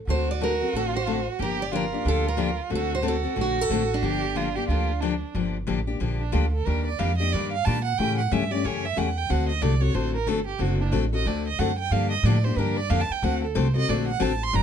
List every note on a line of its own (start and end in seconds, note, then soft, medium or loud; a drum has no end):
0.07 0.60 D2 medium
0.07 0.29 D3 soft
0.07 0.29 A3 medium
0.07 0.29 C4 medium
0.07 1.41 F#4 medium
0.07 0.29 F#4 medium
0.07 0.29 A4 medium
0.07 0.28 C5 medium
0.31 0.42 D5 medium
0.40 0.52 D3 medium
0.40 0.52 A3 medium
0.40 0.52 C4 medium
0.40 0.52 F#4 medium
0.40 0.52 A4 medium
0.40 0.76 A#4 medium
0.61 0.74 C4 soft
0.61 0.74 F#4 soft
0.61 0.73 A4 soft
0.73 1.26 A1 medium
0.73 0.95 D3 medium
0.73 0.95 A3 soft
0.73 0.95 C4 medium
0.73 0.95 F#4 medium
0.73 0.95 A4 medium
0.73 0.82 A4 medium
0.96 1.26 C5 medium
1.07 1.18 D3 medium
1.07 1.18 A3 medium
1.07 1.18 C4 medium
1.07 1.18 F#4 medium
1.07 1.18 A4 medium
1.39 1.93 G1 medium
1.39 1.60 D3 medium
1.39 1.60 F3 medium
1.39 1.60 A#3 medium
1.39 1.60 D4 medium
1.39 1.61 G4 medium
1.39 1.74 G4 medium
1.39 1.62 A#4 medium
1.62 1.73 D5 medium
1.72 1.84 D3 medium
1.72 1.84 F3 medium
1.72 1.84 A#3 medium
1.72 1.84 D4 medium
1.72 2.72 F4 medium
1.72 1.84 G4 medium
1.72 2.05 A#4 medium
1.93 2.04 A#3 soft
1.93 2.04 D4 soft
1.93 2.04 G4 soft
2.05 2.58 D2 medium
2.05 2.26 D3 medium
2.05 2.26 F3 medium
2.05 2.26 A#3 medium
2.05 2.26 D4 medium
2.05 2.27 G4 medium
2.05 2.28 A4 medium
2.28 2.58 A#4 medium
2.37 2.49 D3 medium
2.37 2.49 F3 medium
2.37 2.49 A#3 medium
2.37 2.49 D4 medium
2.37 2.50 G4 medium
2.70 3.25 D2 medium
2.70 2.92 D3 medium
2.70 2.92 A3 medium
2.70 2.92 C4 medium
2.70 2.92 F#4 medium
2.70 3.03 F#4 medium
2.70 2.92 A4 medium
2.75 2.94 A4 medium
2.95 3.05 C5 medium
3.02 3.15 D3 medium
3.02 3.15 A3 medium
3.02 3.15 C4 medium
3.02 3.15 F#4 medium
3.02 4.06 F#4 medium
3.02 3.15 A4 medium
3.08 3.37 A4 medium
3.23 3.35 C4 soft
3.23 3.35 F#4 medium
3.23 3.36 A4 medium
3.36 3.65 A#1 medium
3.36 3.58 D3 medium
3.36 3.58 A3 medium
3.36 3.58 C4 medium
3.36 3.58 F#4 medium
3.36 3.58 A4 medium
3.41 3.61 F#4 medium
3.61 3.94 A4 medium
3.70 3.98 A1 medium
3.70 3.82 D3 medium
3.70 3.82 A3 medium
3.70 3.82 C4 medium
3.70 3.82 F#4 medium
3.70 3.82 A4 medium
3.94 5.00 D4 medium
4.02 4.56 G1 medium
4.02 4.24 D3 medium
4.02 4.24 F3 medium
4.02 4.24 A#3 medium
4.02 4.24 D4 medium
4.02 4.24 G4 medium
4.02 4.38 G4 medium
4.35 4.47 D3 medium
4.35 4.47 F3 medium
4.35 4.47 A#3 medium
4.35 4.48 D4 medium
4.35 4.57 F4 medium
4.35 4.48 G4 medium
4.56 4.69 A#3 soft
4.56 4.69 D4 soft
4.56 4.68 G4 medium
4.56 4.69 G4 soft
4.68 5.22 D2 medium
4.68 4.90 D3 medium
4.68 4.91 F3 medium
4.68 4.91 A#3 medium
4.68 4.91 D4 medium
4.68 5.02 F4 medium
4.68 4.91 G4 medium
5.01 5.14 D3 medium
5.01 5.14 F3 medium
5.01 5.14 A#3 medium
5.01 5.35 D4 medium
5.01 5.14 D4 medium
5.01 5.14 G4 medium
5.34 5.67 G1 medium
5.34 5.56 D3 medium
5.34 5.56 F3 medium
5.34 5.56 A#3 medium
5.34 5.56 D4 medium
5.34 5.56 G4 medium
5.67 6.00 A1 medium
5.67 5.79 D3 medium
5.67 5.79 F3 medium
5.67 5.79 A#3 medium
5.67 5.79 D4 medium
5.67 5.79 G4 medium
5.87 6.00 A#3 soft
5.87 5.99 D4 soft
5.87 6.00 G4 soft
6.00 6.33 A#1 medium
6.00 6.21 D3 medium
6.00 6.21 F3 medium
6.00 6.22 A#3 medium
6.00 6.22 D4 medium
6.00 6.22 G4 medium
6.20 6.34 D4 medium
6.32 6.66 D2 medium
6.32 6.44 D3 medium
6.32 6.44 F3 medium
6.32 6.45 A#3 medium
6.32 6.45 D4 medium
6.32 6.52 F4 medium
6.32 6.45 G4 medium
6.52 6.67 A4 medium
6.65 6.99 D#2 medium
6.65 6.87 D#3 medium
6.65 6.87 G3 medium
6.65 6.88 A#3 medium
6.65 6.88 D4 medium
6.65 6.88 G4 medium
6.65 6.86 A#4 medium
6.86 7.01 D5 medium
6.99 7.32 F2 medium
6.99 7.11 D#3 medium
6.99 7.11 G3 medium
6.99 7.11 A#3 medium
6.99 7.11 D4 medium
6.99 7.11 G4 medium
6.99 7.18 F5 medium
7.18 7.33 A#3 soft
7.18 7.32 D4 medium
7.18 7.32 G4 medium
7.18 7.34 D#5 medium
7.33 7.65 G2 medium
7.33 7.54 D#3 medium
7.33 7.54 G3 medium
7.33 7.54 A#3 medium
7.33 7.54 D4 medium
7.33 7.54 G4 medium
7.33 7.52 D5 medium
7.52 7.67 F5 medium
7.65 7.98 A#2 medium
7.65 7.77 D#3 medium
7.65 7.77 G3 medium
7.65 7.77 A#3 medium
7.65 7.78 D4 medium
7.65 7.78 G4 medium
7.65 7.84 A5 loud
7.85 8.00 F#5 medium
7.98 8.31 A2 medium
7.98 8.20 C#3 medium
7.98 8.20 E3 medium
7.98 8.20 A3 medium
7.98 8.20 C#4 medium
7.98 8.20 G4 medium
7.98 8.18 G5 medium
8.18 8.34 F#5 medium
8.31 8.63 G2 medium
8.31 8.43 C#3 medium
8.31 8.43 E3 medium
8.31 8.43 A3 medium
8.31 8.43 C#4 medium
8.31 8.43 G4 medium
8.31 8.53 E5 medium
8.51 8.64 A3 soft
8.51 8.63 C#4 soft
8.51 8.64 G4 medium
8.51 8.67 D5 medium
8.64 8.97 F#2 medium
8.64 8.85 C#3 medium
8.64 8.85 E3 medium
8.64 8.85 A3 medium
8.64 8.85 C#4 medium
8.64 8.85 G4 medium
8.64 8.87 C#5 medium
8.86 9.00 E5 medium
8.96 9.29 E2 medium
8.96 9.08 C#3 medium
8.96 9.08 E3 medium
8.96 9.08 A3 medium
8.96 9.08 C#4 medium
8.96 9.08 G4 medium
8.96 9.19 F#5 medium
9.17 9.32 G5 loud
9.29 9.61 D2 medium
9.29 9.50 D3 medium
9.29 9.50 A3 medium
9.29 9.50 C4 medium
9.29 9.50 F#4 medium
9.29 9.51 A4 medium
9.29 9.48 F#5 medium
9.49 9.63 D#5 medium
9.61 9.94 C2 medium
9.61 9.73 D3 medium
9.61 9.73 A3 medium
9.61 9.73 C4 medium
9.61 9.73 F#4 medium
9.61 9.74 A4 medium
9.61 9.83 D5 medium
9.80 9.94 C4 soft
9.80 9.93 F#4 medium
9.80 9.94 A4 medium
9.80 9.96 C#5 medium
9.94 10.26 A1 medium
9.94 10.15 D3 medium
9.94 10.15 A3 medium
9.94 10.16 C4 medium
9.94 10.16 F#4 medium
9.94 10.16 A4 medium
9.94 10.15 C5 medium
10.15 10.30 A#4 medium
10.27 10.59 G1 medium
10.27 10.39 D3 medium
10.27 10.39 A3 medium
10.27 10.39 C4 medium
10.27 10.39 F#4 medium
10.27 10.39 A4 medium
10.27 10.47 A4 medium
10.47 10.63 G4 medium
10.59 10.91 F#1 medium
10.59 10.80 D3 medium
10.59 10.81 A3 medium
10.59 10.81 C4 medium
10.59 10.81 F#4 medium
10.59 10.81 A4 medium
10.81 10.89 D4 medium
10.91 11.25 A1 medium
10.91 11.04 D3 medium
10.91 11.04 A3 medium
10.91 11.04 C4 medium
10.91 11.04 F#4 medium
10.91 11.04 A4 medium
11.13 11.25 C4 soft
11.13 11.26 F#4 soft
11.13 11.26 A4 medium
11.13 11.29 D#5 medium
11.25 11.58 D2 medium
11.25 11.47 D3 medium
11.25 11.47 A3 medium
11.25 11.47 C4 medium
11.25 11.47 F#4 medium
11.25 11.47 A4 medium
11.25 11.47 D5 medium
11.48 11.61 D#5 medium
11.59 11.90 F#2 medium
11.59 11.70 D3 medium
11.59 11.70 A3 medium
11.59 11.71 C4 medium
11.59 11.70 F#4 medium
11.59 11.71 A4 medium
11.59 11.78 F#5 medium
11.79 11.94 G5 loud
11.91 12.23 G2 medium
11.91 12.12 D3 medium
11.91 12.13 F3 medium
11.91 12.13 A#3 medium
11.91 12.13 D4 medium
11.91 12.13 G4 medium
11.91 12.11 F5 medium
12.12 12.27 D#5 medium
12.23 12.56 A2 medium
12.23 12.36 D3 medium
12.23 12.36 F3 medium
12.23 12.36 A#3 medium
12.23 12.37 D4 loud
12.23 12.37 G4 medium
12.23 12.46 D5 medium
12.44 12.57 A#3 medium
12.44 12.57 D4 soft
12.44 12.57 G4 soft
12.44 12.59 C5 medium
12.56 12.89 G2 medium
12.56 12.78 D3 medium
12.56 12.79 F3 medium
12.56 12.78 A#3 medium
12.56 12.79 D4 medium
12.56 12.79 G4 medium
12.56 12.79 A#4 medium
12.77 12.92 D5 loud
12.90 13.09 F2 medium
12.90 13.01 D3 medium
12.90 13.01 F3 medium
12.90 13.01 A#3 medium
12.90 13.02 D4 medium
12.90 13.02 G4 loud
12.90 13.02 F5 medium
13.00 13.13 A5 loud
13.10 13.26 G5 medium
13.10 muted upright bass stroke soft
13.22 13.55 D2 medium
13.22 13.43 D3 medium
13.22 13.44 A3 medium
13.22 13.44 C4 medium
13.22 13.44 F#4 medium
13.22 13.44 A4 medium
13.22 13.44 F#5 medium
13.44 13.58 A4 medium
13.55 13.88 C2 medium
13.55 13.66 D3 medium
13.55 13.67 A3 medium
13.55 13.67 C4 medium
13.55 13.67 F#4 medium
13.55 13.67 A4 loud
13.55 13.76 C5 medium
13.76 13.87 C4 soft
13.76 13.88 F#4 medium
13.76 13.88 A4 medium
13.76 13.91 D#5 loud
13.89 14.20 A#1 medium
13.89 14.09 D3 medium
13.89 14.09 A3 medium
13.89 14.09 C4 medium
13.89 14.10 F#4 medium
13.89 14.10 A4 medium
13.89 14.07 D5 medium
14.08 14.23 F#5 medium
14.20 14.53 A1 medium
14.20 14.32 D3 medium
14.20 14.32 A3 medium
14.20 14.32 C4 loud
14.20 14.32 F#4 loud
14.20 14.32 A4 loud
14.20 14.45 A5 medium
14.43 14.57 C6 loud
14.53 14.63 G1 medium
14.53 14.63 D3 medium
14.53 14.63 F3 medium
14.53 14.63 A#3 medium
14.53 14.63 D4 medium
14.53 14.63 G4 medium
14.53 14.63 A#5 loud